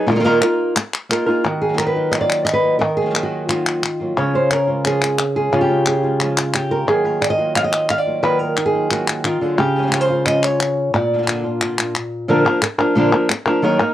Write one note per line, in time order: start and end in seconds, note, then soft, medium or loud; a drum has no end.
0.07 0.23 A#2 medium
0.07 0.10 D#3 medium
0.07 0.10 A#3 medium
0.07 0.10 D#4 medium
0.07 0.10 F4 medium
0.07 0.11 A#4 medium
0.11 0.14 D#3 medium
0.11 0.15 A#3 soft
0.11 0.14 D#4 medium
0.11 0.15 F4 medium
0.15 0.19 D#3 medium
0.15 0.19 A#3 medium
0.15 0.19 D#4 medium
0.15 0.19 F4 medium
0.15 0.20 A#4 medium
0.20 0.23 D#3 medium
0.20 0.24 A#3 medium
0.20 0.24 D#4 medium
0.20 0.24 F4 medium
0.20 0.24 A#4 medium
0.24 0.41 A#2 medium
0.24 0.41 D#3 medium
0.24 0.41 A#3 medium
0.24 0.41 D#4 medium
0.24 0.41 F4 medium
0.24 0.40 A#4 medium
0.41 0.75 A#3 soft
0.41 0.75 D#4 soft
0.41 0.75 F4 medium
0.41 0.75 A#4 medium
0.41 clap medium
0.76 muted nylon-string guitar stroke medium
0.76 clap medium
0.94 clap medium
1.09 1.26 A#3 soft
1.09 1.27 D#4 soft
1.09 1.26 F4 medium
1.09 1.25 A#4 medium
1.09 clap medium
1.26 1.45 A#3 soft
1.26 1.44 D#4 soft
1.26 1.44 F4 soft
1.26 1.45 G#4 medium
1.26 1.43 A#4 medium
1.44 2.79 D#3 medium
1.44 1.96 F#4 medium
1.44 muted nylon-string guitar stroke medium
1.62 1.78 G#4 medium
1.69 1.72 D#3 soft
1.69 1.73 F#3 soft
1.69 1.73 A#3 soft
1.69 1.74 F4 soft
1.73 1.77 D#3 soft
1.73 1.77 F#3 medium
1.73 1.78 A#3 medium
1.73 1.78 F4 medium
1.78 2.10 D#3 medium
1.78 2.11 F#3 medium
1.78 2.12 A#3 medium
1.78 2.12 F4 medium
1.78 1.86 A#4 medium
1.78 clap medium
1.87 2.13 B4 medium
1.96 2.79 D#4 soft
2.11 2.45 D#3 medium
2.11 2.45 F#3 medium
2.11 2.46 A#3 medium
2.11 2.46 F4 medium
2.11 2.20 D#5 medium
2.11 clap medium
2.21 2.44 D5 medium
2.30 clap medium
2.45 2.89 D#5 medium
2.45 muted nylon-string guitar stroke soft
2.45 clap medium
2.53 2.79 B4 medium
2.63 2.81 F#3 soft
2.63 2.80 A#3 soft
2.63 2.80 F4 soft
2.79 4.15 D#3 medium
2.79 2.96 A#4 medium
2.79 muted nylon-string guitar stroke medium
2.97 3.57 G#4 medium
3.01 3.05 D#3 soft
3.01 3.05 F#3 soft
3.01 3.05 A#3 soft
3.01 3.06 F4 soft
3.06 3.09 D#3 soft
3.06 3.09 F#3 soft
3.06 3.10 A#3 soft
3.06 3.10 F4 soft
3.10 3.14 D#3 medium
3.10 3.14 F#3 medium
3.10 3.14 A#3 medium
3.10 3.15 F4 medium
3.15 3.47 D#3 medium
3.15 3.48 F#3 medium
3.15 3.49 A#3 medium
3.15 3.49 F4 medium
3.15 clap medium
3.23 3.48 F#4 medium
3.49 3.82 D#3 medium
3.49 3.82 F#3 medium
3.49 3.83 A#3 medium
3.49 4.17 F4 medium
3.49 3.83 F4 medium
3.49 clap medium
3.67 clap medium
3.83 muted nylon-string guitar stroke soft
3.83 clap medium
4.00 4.17 F#3 soft
4.00 4.17 A#3 soft
4.00 4.16 F4 soft
4.17 4.33 C#3 medium
4.17 5.51 C#3 medium
4.17 4.34 F3 medium
4.17 4.34 G#3 medium
4.17 4.33 C#4 medium
4.17 4.32 F4 medium
4.17 4.69 C#5 medium
4.33 4.50 G#3 soft
4.33 4.50 C#4 soft
4.33 4.50 F4 soft
4.33 4.52 C5 medium
4.50 4.85 A#4 medium
4.50 muted nylon-string guitar stroke soft
4.50 clap medium
4.67 4.84 G#3 soft
4.67 4.85 C#4 soft
4.67 4.84 F4 soft
4.84 5.01 C#3 medium
4.84 5.01 F3 medium
4.84 5.01 G#3 medium
4.84 5.02 C#4 medium
4.84 5.00 F4 medium
4.84 5.35 G#4 medium
4.84 clap medium
5.02 5.18 G#3 soft
5.02 5.18 C#4 soft
5.02 5.18 F4 soft
5.02 clap medium
5.19 muted nylon-string guitar stroke soft
5.19 clap medium
5.35 5.52 G#3 soft
5.35 5.52 C#4 soft
5.35 5.52 F4 soft
5.35 5.87 G#4 medium
5.52 5.69 C#3 medium
5.52 6.86 C#3 medium
5.52 5.69 F3 medium
5.52 5.69 G#3 medium
5.52 5.69 C#4 medium
5.52 5.95 F4 medium
5.52 5.68 F4 medium
5.61 6.20 G4 medium
5.69 5.86 G#3 soft
5.69 5.86 C#4 soft
5.69 5.86 F4 soft
5.86 6.71 G#4 medium
5.86 muted nylon-string guitar stroke soft
5.86 clap medium
6.03 6.20 G#3 soft
6.03 6.20 C#4 soft
6.03 6.19 F4 soft
6.03 6.88 F4 soft
6.20 6.36 C#3 medium
6.20 6.37 F3 medium
6.20 6.37 G#3 medium
6.20 6.37 C#4 medium
6.20 6.36 F4 medium
6.20 clap medium
6.37 6.54 G#3 soft
6.37 6.54 C#4 soft
6.37 6.53 F4 soft
6.37 clap medium
6.54 6.88 G4 medium
6.54 muted nylon-string guitar stroke soft
6.54 clap medium
6.71 6.88 G#3 soft
6.71 6.88 C#4 soft
6.71 6.87 F4 soft
6.71 6.88 A#4 medium
6.87 7.04 D#3 medium
6.87 8.21 D#3 medium
6.87 7.04 F#3 medium
6.87 7.04 A#3 medium
6.87 7.03 F4 medium
6.87 7.38 G#4 medium
7.04 7.20 F#3 soft
7.04 7.21 A#3 soft
7.04 7.21 F4 soft
7.04 7.56 A#4 medium
7.21 7.30 D5 medium
7.21 muted nylon-string guitar stroke soft
7.21 clap medium
7.30 7.56 D#5 medium
7.38 7.54 F#3 soft
7.38 7.55 A#3 soft
7.38 7.54 F4 soft
7.38 8.21 F#4 soft
7.54 7.71 D#3 medium
7.54 7.72 F#3 medium
7.54 7.72 A#3 medium
7.54 7.71 F4 medium
7.54 7.64 F5 loud
7.54 clap medium
7.64 7.90 D#5 medium
7.72 7.88 F#3 soft
7.72 7.89 A#3 soft
7.72 7.88 F4 soft
7.72 clap medium
7.89 7.98 F5 medium
7.89 muted nylon-string guitar stroke soft
7.89 clap medium
7.98 8.57 D5 loud
8.06 8.22 F#3 soft
8.06 8.23 A#3 soft
8.06 8.22 F4 soft
8.23 8.39 D#3 medium
8.23 9.23 D#3 medium
8.23 8.40 F#3 medium
8.23 8.39 A#3 medium
8.23 8.38 F4 medium
8.23 8.39 B4 medium
8.39 8.56 F#3 soft
8.39 8.56 A#3 soft
8.39 8.56 F4 soft
8.39 8.65 A#4 medium
8.57 8.91 D#4 soft
8.57 muted nylon-string guitar stroke soft
8.57 clap medium
8.66 9.25 G#4 medium
8.73 8.90 F#3 soft
8.73 8.90 A#3 soft
8.73 8.90 F4 soft
8.90 9.07 D#3 medium
8.90 9.07 F#3 medium
8.90 9.07 A#3 medium
8.90 9.06 F4 medium
8.90 9.25 F#4 medium
8.90 clap medium
9.07 9.23 F#3 soft
9.07 9.24 A#3 soft
9.07 9.24 F4 soft
9.07 clap medium
9.24 9.41 D#3 medium
9.24 9.59 F4 medium
9.24 muted nylon-string guitar stroke soft
9.24 clap medium
9.41 9.58 D3 medium
9.41 9.58 F#3 soft
9.41 9.58 A#3 soft
9.41 9.57 F4 soft
9.41 9.59 G#4 medium
9.58 10.91 C#3 medium
9.58 10.01 G4 medium
9.58 muted nylon-string guitar stroke medium
9.76 9.81 F3 soft
9.76 9.82 G#3 soft
9.76 9.82 C#4 soft
9.76 9.83 F4 soft
9.76 9.92 G#4 medium
9.83 9.86 F3 soft
9.83 9.86 G#3 soft
9.83 9.87 C#4 medium
9.83 9.87 F4 soft
9.87 9.91 F3 medium
9.87 9.91 G#3 medium
9.87 9.91 C#4 medium
9.87 9.92 F4 medium
9.92 10.08 C#3 medium
9.92 10.08 F3 medium
9.92 10.09 G#3 medium
9.92 10.08 C#4 medium
9.92 10.07 F4 medium
9.92 10.35 A#4 medium
9.92 clap medium
10.01 10.26 C5 medium
10.08 10.25 G#3 soft
10.08 10.26 C#4 soft
10.08 10.25 F4 soft
10.08 12.29 F4 soft
10.25 10.42 C#3 medium
10.25 10.42 F3 medium
10.25 10.43 G#3 medium
10.25 10.42 C#4 medium
10.25 10.41 F4 medium
10.25 10.44 D#5 medium
10.25 clap medium
10.42 10.59 G#3 soft
10.42 10.59 C#4 soft
10.42 10.59 F4 soft
10.42 10.94 C#5 medium
10.42 clap medium
10.59 muted nylon-string guitar stroke soft
10.59 clap medium
10.94 12.27 A#2 medium
10.94 12.29 D5 medium
10.94 muted nylon-string guitar stroke medium
11.14 11.17 D3 soft
11.14 11.17 A#3 soft
11.14 11.18 D4 soft
11.14 11.18 F4 soft
11.18 11.21 D3 soft
11.18 11.22 A#3 soft
11.18 11.22 D4 medium
11.18 11.22 F4 soft
11.22 11.26 D3 medium
11.22 11.26 A#3 soft
11.22 11.27 D4 medium
11.22 11.27 F4 medium
11.27 11.44 A#2 medium
11.27 11.44 D3 medium
11.27 11.44 A#3 medium
11.27 11.44 D4 medium
11.27 11.42 F4 medium
11.27 clap medium
11.44 11.61 A#3 soft
11.44 11.61 D4 soft
11.44 11.60 F4 soft
11.61 11.77 A#2 medium
11.61 11.78 D3 medium
11.61 11.78 A#3 medium
11.61 11.78 D4 medium
11.61 11.77 F4 medium
11.61 clap medium
11.78 11.94 A#3 soft
11.78 11.95 D4 soft
11.78 11.94 F4 soft
11.78 clap medium
11.95 muted nylon-string guitar stroke soft
11.95 clap medium
12.28 12.45 A#2 medium
12.28 12.45 D3 medium
12.28 12.45 F3 medium
12.28 12.45 A#3 medium
12.28 12.45 D4 medium
12.28 12.44 A#4 medium
12.45 12.61 F3 soft
12.45 12.61 A#3 soft
12.45 12.61 D4 medium
12.45 12.61 A#4 medium
12.62 muted nylon-string guitar stroke medium
12.62 clap medium
12.78 12.95 F3 soft
12.78 12.95 A#3 soft
12.78 12.95 D4 medium
12.78 12.95 A#4 medium
12.95 13.12 A#2 medium
12.95 13.12 D3 medium
12.95 13.12 F3 medium
12.95 13.13 A#3 medium
12.95 13.12 D4 medium
12.95 13.11 A#4 medium
13.12 13.29 F3 soft
13.12 13.29 A#3 soft
13.12 13.29 D4 soft
13.12 13.29 A#4 medium
13.30 muted nylon-string guitar stroke medium
13.30 clap medium
13.46 13.63 F3 soft
13.46 13.62 A#3 medium
13.46 13.63 D4 medium
13.46 13.63 A#4 medium
13.62 13.79 D#3 medium
13.62 13.79 F#3 medium
13.62 13.80 A#3 medium
13.62 13.79 D#4 medium
13.62 13.78 A#4 medium
13.79 13.94 A#3 soft
13.79 13.94 D#4 medium
13.79 13.94 A#4 medium